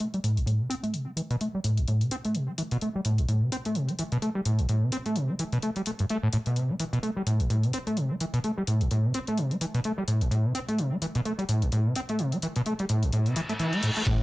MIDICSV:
0, 0, Header, 1, 5, 480
1, 0, Start_track
1, 0, Key_signature, 0, "minor"
1, 0, Tempo, 468750
1, 966, Time_signature, 4, 2, 24, 8
1, 14570, End_track
2, 0, Start_track
2, 0, Title_t, "Acid bass"
2, 0, Program_c, 0, 38
2, 1, Note_on_c, 0, 57, 75
2, 79, Note_off_c, 0, 57, 0
2, 143, Note_on_c, 0, 55, 72
2, 199, Note_off_c, 0, 55, 0
2, 244, Note_on_c, 0, 45, 71
2, 378, Note_on_c, 0, 33, 94
2, 393, Note_off_c, 0, 45, 0
2, 465, Note_off_c, 0, 33, 0
2, 475, Note_on_c, 0, 45, 75
2, 613, Note_on_c, 0, 48, 73
2, 628, Note_off_c, 0, 45, 0
2, 703, Note_off_c, 0, 48, 0
2, 712, Note_on_c, 0, 60, 98
2, 764, Note_off_c, 0, 60, 0
2, 851, Note_on_c, 0, 57, 71
2, 954, Note_on_c, 0, 48, 76
2, 970, Note_off_c, 0, 57, 0
2, 1089, Note_on_c, 0, 57, 76
2, 1105, Note_off_c, 0, 48, 0
2, 1153, Note_off_c, 0, 57, 0
2, 1192, Note_on_c, 0, 52, 73
2, 1244, Note_off_c, 0, 52, 0
2, 1335, Note_on_c, 0, 47, 94
2, 1395, Note_off_c, 0, 47, 0
2, 1442, Note_on_c, 0, 57, 75
2, 1519, Note_off_c, 0, 57, 0
2, 1581, Note_on_c, 0, 55, 74
2, 1639, Note_off_c, 0, 55, 0
2, 1682, Note_on_c, 0, 45, 73
2, 1824, Note_on_c, 0, 33, 98
2, 1839, Note_off_c, 0, 45, 0
2, 1908, Note_off_c, 0, 33, 0
2, 1927, Note_on_c, 0, 45, 77
2, 2066, Note_on_c, 0, 48, 70
2, 2082, Note_off_c, 0, 45, 0
2, 2149, Note_off_c, 0, 48, 0
2, 2165, Note_on_c, 0, 60, 94
2, 2211, Note_off_c, 0, 60, 0
2, 2303, Note_on_c, 0, 57, 73
2, 2403, Note_on_c, 0, 48, 74
2, 2418, Note_off_c, 0, 57, 0
2, 2541, Note_on_c, 0, 57, 73
2, 2557, Note_off_c, 0, 48, 0
2, 2598, Note_off_c, 0, 57, 0
2, 2643, Note_on_c, 0, 52, 72
2, 2690, Note_off_c, 0, 52, 0
2, 2782, Note_on_c, 0, 47, 95
2, 2839, Note_off_c, 0, 47, 0
2, 2887, Note_on_c, 0, 57, 75
2, 2962, Note_off_c, 0, 57, 0
2, 3025, Note_on_c, 0, 55, 74
2, 3080, Note_off_c, 0, 55, 0
2, 3126, Note_on_c, 0, 45, 75
2, 3262, Note_on_c, 0, 33, 98
2, 3278, Note_off_c, 0, 45, 0
2, 3347, Note_off_c, 0, 33, 0
2, 3363, Note_on_c, 0, 45, 75
2, 3499, Note_on_c, 0, 48, 71
2, 3515, Note_off_c, 0, 45, 0
2, 3586, Note_off_c, 0, 48, 0
2, 3606, Note_on_c, 0, 60, 98
2, 3651, Note_off_c, 0, 60, 0
2, 3745, Note_on_c, 0, 57, 73
2, 3842, Note_on_c, 0, 48, 78
2, 3857, Note_off_c, 0, 57, 0
2, 3983, Note_on_c, 0, 57, 72
2, 3999, Note_off_c, 0, 48, 0
2, 4039, Note_off_c, 0, 57, 0
2, 4086, Note_on_c, 0, 52, 72
2, 4131, Note_off_c, 0, 52, 0
2, 4219, Note_on_c, 0, 47, 95
2, 4277, Note_off_c, 0, 47, 0
2, 4322, Note_on_c, 0, 57, 78
2, 4399, Note_off_c, 0, 57, 0
2, 4456, Note_on_c, 0, 55, 74
2, 4516, Note_off_c, 0, 55, 0
2, 4563, Note_on_c, 0, 45, 74
2, 4703, Note_on_c, 0, 33, 94
2, 4719, Note_off_c, 0, 45, 0
2, 4788, Note_off_c, 0, 33, 0
2, 4804, Note_on_c, 0, 45, 78
2, 4942, Note_on_c, 0, 48, 72
2, 4958, Note_off_c, 0, 45, 0
2, 5027, Note_off_c, 0, 48, 0
2, 5043, Note_on_c, 0, 60, 100
2, 5089, Note_off_c, 0, 60, 0
2, 5181, Note_on_c, 0, 57, 74
2, 5282, Note_on_c, 0, 48, 77
2, 5297, Note_off_c, 0, 57, 0
2, 5418, Note_on_c, 0, 57, 74
2, 5433, Note_off_c, 0, 48, 0
2, 5477, Note_off_c, 0, 57, 0
2, 5524, Note_on_c, 0, 52, 72
2, 5570, Note_off_c, 0, 52, 0
2, 5659, Note_on_c, 0, 47, 98
2, 5717, Note_off_c, 0, 47, 0
2, 5765, Note_on_c, 0, 57, 74
2, 5840, Note_off_c, 0, 57, 0
2, 5903, Note_on_c, 0, 55, 71
2, 5959, Note_off_c, 0, 55, 0
2, 6009, Note_on_c, 0, 57, 69
2, 6053, Note_off_c, 0, 57, 0
2, 6142, Note_on_c, 0, 43, 73
2, 6199, Note_off_c, 0, 43, 0
2, 6248, Note_on_c, 0, 57, 96
2, 6322, Note_off_c, 0, 57, 0
2, 6381, Note_on_c, 0, 45, 97
2, 6438, Note_off_c, 0, 45, 0
2, 6485, Note_on_c, 0, 45, 100
2, 6530, Note_off_c, 0, 45, 0
2, 6622, Note_on_c, 0, 47, 70
2, 6726, Note_on_c, 0, 48, 77
2, 6742, Note_off_c, 0, 47, 0
2, 6857, Note_on_c, 0, 57, 75
2, 6872, Note_off_c, 0, 48, 0
2, 6916, Note_off_c, 0, 57, 0
2, 6961, Note_on_c, 0, 52, 75
2, 7008, Note_off_c, 0, 52, 0
2, 7095, Note_on_c, 0, 47, 95
2, 7155, Note_off_c, 0, 47, 0
2, 7197, Note_on_c, 0, 57, 80
2, 7277, Note_off_c, 0, 57, 0
2, 7337, Note_on_c, 0, 55, 73
2, 7396, Note_off_c, 0, 55, 0
2, 7440, Note_on_c, 0, 45, 74
2, 7575, Note_on_c, 0, 33, 100
2, 7590, Note_off_c, 0, 45, 0
2, 7664, Note_off_c, 0, 33, 0
2, 7681, Note_on_c, 0, 45, 73
2, 7820, Note_on_c, 0, 48, 74
2, 7836, Note_off_c, 0, 45, 0
2, 7906, Note_off_c, 0, 48, 0
2, 7923, Note_on_c, 0, 60, 92
2, 7970, Note_off_c, 0, 60, 0
2, 8057, Note_on_c, 0, 57, 73
2, 8159, Note_on_c, 0, 48, 78
2, 8175, Note_off_c, 0, 57, 0
2, 8298, Note_on_c, 0, 57, 72
2, 8313, Note_off_c, 0, 48, 0
2, 8357, Note_off_c, 0, 57, 0
2, 8404, Note_on_c, 0, 52, 72
2, 8450, Note_off_c, 0, 52, 0
2, 8535, Note_on_c, 0, 47, 97
2, 8595, Note_off_c, 0, 47, 0
2, 8644, Note_on_c, 0, 57, 75
2, 8720, Note_off_c, 0, 57, 0
2, 8781, Note_on_c, 0, 55, 74
2, 8838, Note_off_c, 0, 55, 0
2, 8884, Note_on_c, 0, 45, 74
2, 9023, Note_on_c, 0, 33, 99
2, 9038, Note_off_c, 0, 45, 0
2, 9108, Note_off_c, 0, 33, 0
2, 9128, Note_on_c, 0, 45, 77
2, 9263, Note_on_c, 0, 48, 75
2, 9278, Note_off_c, 0, 45, 0
2, 9347, Note_off_c, 0, 48, 0
2, 9365, Note_on_c, 0, 60, 101
2, 9410, Note_off_c, 0, 60, 0
2, 9503, Note_on_c, 0, 57, 77
2, 9604, Note_on_c, 0, 48, 77
2, 9619, Note_off_c, 0, 57, 0
2, 9740, Note_on_c, 0, 57, 72
2, 9755, Note_off_c, 0, 48, 0
2, 9798, Note_off_c, 0, 57, 0
2, 9842, Note_on_c, 0, 52, 69
2, 9889, Note_off_c, 0, 52, 0
2, 9978, Note_on_c, 0, 47, 94
2, 10037, Note_off_c, 0, 47, 0
2, 10086, Note_on_c, 0, 57, 79
2, 10161, Note_off_c, 0, 57, 0
2, 10218, Note_on_c, 0, 55, 73
2, 10277, Note_off_c, 0, 55, 0
2, 10320, Note_on_c, 0, 45, 75
2, 10455, Note_on_c, 0, 33, 97
2, 10470, Note_off_c, 0, 45, 0
2, 10544, Note_off_c, 0, 33, 0
2, 10556, Note_on_c, 0, 45, 76
2, 10697, Note_on_c, 0, 48, 75
2, 10712, Note_off_c, 0, 45, 0
2, 10785, Note_off_c, 0, 48, 0
2, 10800, Note_on_c, 0, 60, 102
2, 10848, Note_off_c, 0, 60, 0
2, 10940, Note_on_c, 0, 57, 75
2, 11046, Note_on_c, 0, 48, 81
2, 11061, Note_off_c, 0, 57, 0
2, 11179, Note_on_c, 0, 57, 75
2, 11194, Note_off_c, 0, 48, 0
2, 11237, Note_off_c, 0, 57, 0
2, 11282, Note_on_c, 0, 52, 75
2, 11329, Note_off_c, 0, 52, 0
2, 11421, Note_on_c, 0, 47, 99
2, 11479, Note_off_c, 0, 47, 0
2, 11524, Note_on_c, 0, 57, 75
2, 11600, Note_off_c, 0, 57, 0
2, 11657, Note_on_c, 0, 55, 73
2, 11716, Note_off_c, 0, 55, 0
2, 11763, Note_on_c, 0, 45, 68
2, 11901, Note_on_c, 0, 33, 98
2, 11916, Note_off_c, 0, 45, 0
2, 11987, Note_off_c, 0, 33, 0
2, 12007, Note_on_c, 0, 45, 78
2, 12145, Note_on_c, 0, 48, 73
2, 12160, Note_off_c, 0, 45, 0
2, 12229, Note_off_c, 0, 48, 0
2, 12248, Note_on_c, 0, 60, 100
2, 12292, Note_off_c, 0, 60, 0
2, 12384, Note_on_c, 0, 57, 70
2, 12485, Note_on_c, 0, 48, 78
2, 12500, Note_off_c, 0, 57, 0
2, 12623, Note_on_c, 0, 57, 74
2, 12639, Note_off_c, 0, 48, 0
2, 12679, Note_off_c, 0, 57, 0
2, 12727, Note_on_c, 0, 52, 74
2, 12771, Note_off_c, 0, 52, 0
2, 12865, Note_on_c, 0, 47, 98
2, 12920, Note_off_c, 0, 47, 0
2, 12966, Note_on_c, 0, 57, 76
2, 13041, Note_off_c, 0, 57, 0
2, 13103, Note_on_c, 0, 55, 77
2, 13159, Note_off_c, 0, 55, 0
2, 13205, Note_on_c, 0, 45, 75
2, 13344, Note_on_c, 0, 33, 101
2, 13360, Note_off_c, 0, 45, 0
2, 13428, Note_off_c, 0, 33, 0
2, 13446, Note_on_c, 0, 45, 79
2, 13584, Note_on_c, 0, 48, 71
2, 13599, Note_off_c, 0, 45, 0
2, 13668, Note_off_c, 0, 48, 0
2, 13684, Note_on_c, 0, 52, 96
2, 13730, Note_off_c, 0, 52, 0
2, 13818, Note_on_c, 0, 57, 96
2, 13854, Note_off_c, 0, 57, 0
2, 13923, Note_on_c, 0, 52, 96
2, 14062, Note_on_c, 0, 57, 76
2, 14077, Note_off_c, 0, 52, 0
2, 14147, Note_off_c, 0, 57, 0
2, 14166, Note_on_c, 0, 45, 75
2, 14241, Note_off_c, 0, 45, 0
2, 14303, Note_on_c, 0, 57, 71
2, 14360, Note_off_c, 0, 57, 0
2, 14406, Note_on_c, 0, 45, 78
2, 14559, Note_off_c, 0, 45, 0
2, 14570, End_track
3, 0, Start_track
3, 0, Title_t, "Analog synth bass"
3, 0, Program_c, 1, 38
3, 14405, Note_on_c, 1, 33, 93
3, 14521, Note_off_c, 1, 33, 0
3, 14570, End_track
4, 0, Start_track
4, 0, Title_t, "Reverse cymbal"
4, 0, Program_c, 2, 119
4, 13443, Note_on_c, 2, 60, 68
4, 14404, Note_off_c, 2, 60, 0
4, 14570, End_track
5, 0, Start_track
5, 0, Title_t, "Drums"
5, 1, Note_on_c, 9, 42, 39
5, 103, Note_off_c, 9, 42, 0
5, 141, Note_on_c, 9, 42, 27
5, 244, Note_off_c, 9, 42, 0
5, 246, Note_on_c, 9, 42, 71
5, 348, Note_off_c, 9, 42, 0
5, 383, Note_on_c, 9, 42, 29
5, 484, Note_off_c, 9, 42, 0
5, 484, Note_on_c, 9, 42, 40
5, 586, Note_off_c, 9, 42, 0
5, 722, Note_on_c, 9, 42, 67
5, 825, Note_off_c, 9, 42, 0
5, 857, Note_on_c, 9, 42, 30
5, 959, Note_off_c, 9, 42, 0
5, 960, Note_on_c, 9, 42, 39
5, 1062, Note_off_c, 9, 42, 0
5, 1197, Note_on_c, 9, 42, 68
5, 1300, Note_off_c, 9, 42, 0
5, 1338, Note_on_c, 9, 42, 28
5, 1440, Note_off_c, 9, 42, 0
5, 1442, Note_on_c, 9, 42, 40
5, 1544, Note_off_c, 9, 42, 0
5, 1681, Note_on_c, 9, 42, 70
5, 1783, Note_off_c, 9, 42, 0
5, 1817, Note_on_c, 9, 42, 30
5, 1919, Note_off_c, 9, 42, 0
5, 1921, Note_on_c, 9, 42, 40
5, 2023, Note_off_c, 9, 42, 0
5, 2059, Note_on_c, 9, 42, 27
5, 2162, Note_off_c, 9, 42, 0
5, 2163, Note_on_c, 9, 42, 72
5, 2265, Note_off_c, 9, 42, 0
5, 2300, Note_on_c, 9, 42, 30
5, 2402, Note_off_c, 9, 42, 0
5, 2402, Note_on_c, 9, 42, 41
5, 2505, Note_off_c, 9, 42, 0
5, 2642, Note_on_c, 9, 42, 68
5, 2744, Note_off_c, 9, 42, 0
5, 2779, Note_on_c, 9, 42, 31
5, 2881, Note_off_c, 9, 42, 0
5, 2882, Note_on_c, 9, 42, 39
5, 2984, Note_off_c, 9, 42, 0
5, 3121, Note_on_c, 9, 42, 66
5, 3223, Note_off_c, 9, 42, 0
5, 3260, Note_on_c, 9, 42, 27
5, 3362, Note_off_c, 9, 42, 0
5, 3364, Note_on_c, 9, 42, 37
5, 3467, Note_off_c, 9, 42, 0
5, 3605, Note_on_c, 9, 42, 69
5, 3708, Note_off_c, 9, 42, 0
5, 3741, Note_on_c, 9, 42, 30
5, 3841, Note_off_c, 9, 42, 0
5, 3841, Note_on_c, 9, 42, 38
5, 3944, Note_off_c, 9, 42, 0
5, 3979, Note_on_c, 9, 42, 27
5, 4081, Note_off_c, 9, 42, 0
5, 4082, Note_on_c, 9, 42, 69
5, 4184, Note_off_c, 9, 42, 0
5, 4218, Note_on_c, 9, 42, 29
5, 4321, Note_off_c, 9, 42, 0
5, 4323, Note_on_c, 9, 42, 39
5, 4425, Note_off_c, 9, 42, 0
5, 4561, Note_on_c, 9, 42, 67
5, 4664, Note_off_c, 9, 42, 0
5, 4697, Note_on_c, 9, 42, 30
5, 4800, Note_off_c, 9, 42, 0
5, 4800, Note_on_c, 9, 42, 38
5, 4903, Note_off_c, 9, 42, 0
5, 5039, Note_on_c, 9, 42, 64
5, 5141, Note_off_c, 9, 42, 0
5, 5178, Note_on_c, 9, 42, 27
5, 5280, Note_off_c, 9, 42, 0
5, 5280, Note_on_c, 9, 42, 37
5, 5383, Note_off_c, 9, 42, 0
5, 5521, Note_on_c, 9, 42, 67
5, 5623, Note_off_c, 9, 42, 0
5, 5658, Note_on_c, 9, 42, 27
5, 5759, Note_off_c, 9, 42, 0
5, 5759, Note_on_c, 9, 42, 37
5, 5862, Note_off_c, 9, 42, 0
5, 5897, Note_on_c, 9, 42, 26
5, 5999, Note_off_c, 9, 42, 0
5, 5999, Note_on_c, 9, 42, 67
5, 6101, Note_off_c, 9, 42, 0
5, 6134, Note_on_c, 9, 42, 28
5, 6237, Note_off_c, 9, 42, 0
5, 6241, Note_on_c, 9, 42, 38
5, 6343, Note_off_c, 9, 42, 0
5, 6478, Note_on_c, 9, 42, 66
5, 6580, Note_off_c, 9, 42, 0
5, 6614, Note_on_c, 9, 42, 28
5, 6717, Note_off_c, 9, 42, 0
5, 6720, Note_on_c, 9, 42, 37
5, 6822, Note_off_c, 9, 42, 0
5, 6959, Note_on_c, 9, 42, 61
5, 7061, Note_off_c, 9, 42, 0
5, 7099, Note_on_c, 9, 42, 26
5, 7201, Note_off_c, 9, 42, 0
5, 7201, Note_on_c, 9, 42, 36
5, 7303, Note_off_c, 9, 42, 0
5, 7441, Note_on_c, 9, 42, 65
5, 7544, Note_off_c, 9, 42, 0
5, 7577, Note_on_c, 9, 42, 28
5, 7680, Note_off_c, 9, 42, 0
5, 7682, Note_on_c, 9, 42, 35
5, 7785, Note_off_c, 9, 42, 0
5, 7818, Note_on_c, 9, 42, 26
5, 7919, Note_off_c, 9, 42, 0
5, 7919, Note_on_c, 9, 42, 68
5, 8022, Note_off_c, 9, 42, 0
5, 8058, Note_on_c, 9, 42, 28
5, 8160, Note_off_c, 9, 42, 0
5, 8160, Note_on_c, 9, 42, 37
5, 8263, Note_off_c, 9, 42, 0
5, 8402, Note_on_c, 9, 42, 64
5, 8504, Note_off_c, 9, 42, 0
5, 8537, Note_on_c, 9, 42, 28
5, 8640, Note_off_c, 9, 42, 0
5, 8642, Note_on_c, 9, 42, 37
5, 8744, Note_off_c, 9, 42, 0
5, 8881, Note_on_c, 9, 42, 61
5, 8983, Note_off_c, 9, 42, 0
5, 9021, Note_on_c, 9, 42, 26
5, 9122, Note_off_c, 9, 42, 0
5, 9122, Note_on_c, 9, 42, 36
5, 9224, Note_off_c, 9, 42, 0
5, 9361, Note_on_c, 9, 42, 65
5, 9463, Note_off_c, 9, 42, 0
5, 9496, Note_on_c, 9, 42, 28
5, 9598, Note_off_c, 9, 42, 0
5, 9600, Note_on_c, 9, 42, 36
5, 9702, Note_off_c, 9, 42, 0
5, 9740, Note_on_c, 9, 42, 25
5, 9841, Note_off_c, 9, 42, 0
5, 9841, Note_on_c, 9, 42, 67
5, 9944, Note_off_c, 9, 42, 0
5, 9979, Note_on_c, 9, 42, 28
5, 10077, Note_off_c, 9, 42, 0
5, 10077, Note_on_c, 9, 42, 38
5, 10180, Note_off_c, 9, 42, 0
5, 10318, Note_on_c, 9, 42, 62
5, 10421, Note_off_c, 9, 42, 0
5, 10458, Note_on_c, 9, 42, 27
5, 10560, Note_off_c, 9, 42, 0
5, 10562, Note_on_c, 9, 42, 38
5, 10665, Note_off_c, 9, 42, 0
5, 10801, Note_on_c, 9, 42, 65
5, 10904, Note_off_c, 9, 42, 0
5, 10941, Note_on_c, 9, 42, 27
5, 11043, Note_off_c, 9, 42, 0
5, 11043, Note_on_c, 9, 42, 38
5, 11146, Note_off_c, 9, 42, 0
5, 11282, Note_on_c, 9, 42, 67
5, 11385, Note_off_c, 9, 42, 0
5, 11418, Note_on_c, 9, 42, 28
5, 11521, Note_off_c, 9, 42, 0
5, 11525, Note_on_c, 9, 42, 37
5, 11627, Note_off_c, 9, 42, 0
5, 11662, Note_on_c, 9, 42, 27
5, 11763, Note_off_c, 9, 42, 0
5, 11763, Note_on_c, 9, 42, 70
5, 11865, Note_off_c, 9, 42, 0
5, 11900, Note_on_c, 9, 42, 28
5, 12001, Note_off_c, 9, 42, 0
5, 12001, Note_on_c, 9, 42, 39
5, 12104, Note_off_c, 9, 42, 0
5, 12242, Note_on_c, 9, 42, 64
5, 12344, Note_off_c, 9, 42, 0
5, 12379, Note_on_c, 9, 42, 28
5, 12481, Note_off_c, 9, 42, 0
5, 12481, Note_on_c, 9, 42, 41
5, 12583, Note_off_c, 9, 42, 0
5, 12618, Note_on_c, 9, 42, 28
5, 12720, Note_off_c, 9, 42, 0
5, 12721, Note_on_c, 9, 42, 64
5, 12824, Note_off_c, 9, 42, 0
5, 12858, Note_on_c, 9, 42, 29
5, 12960, Note_off_c, 9, 42, 0
5, 12962, Note_on_c, 9, 42, 40
5, 13064, Note_off_c, 9, 42, 0
5, 13097, Note_on_c, 9, 42, 29
5, 13200, Note_off_c, 9, 42, 0
5, 13200, Note_on_c, 9, 42, 68
5, 13302, Note_off_c, 9, 42, 0
5, 13339, Note_on_c, 9, 42, 30
5, 13440, Note_off_c, 9, 42, 0
5, 13440, Note_on_c, 9, 42, 39
5, 13542, Note_off_c, 9, 42, 0
5, 13578, Note_on_c, 9, 42, 27
5, 13680, Note_off_c, 9, 42, 0
5, 13680, Note_on_c, 9, 42, 70
5, 13782, Note_off_c, 9, 42, 0
5, 13819, Note_on_c, 9, 42, 30
5, 13921, Note_off_c, 9, 42, 0
5, 13922, Note_on_c, 9, 42, 41
5, 14024, Note_off_c, 9, 42, 0
5, 14057, Note_on_c, 9, 42, 27
5, 14158, Note_off_c, 9, 42, 0
5, 14158, Note_on_c, 9, 42, 68
5, 14261, Note_off_c, 9, 42, 0
5, 14296, Note_on_c, 9, 42, 30
5, 14398, Note_off_c, 9, 42, 0
5, 14404, Note_on_c, 9, 36, 103
5, 14405, Note_on_c, 9, 51, 80
5, 14506, Note_off_c, 9, 36, 0
5, 14507, Note_off_c, 9, 51, 0
5, 14570, End_track
0, 0, End_of_file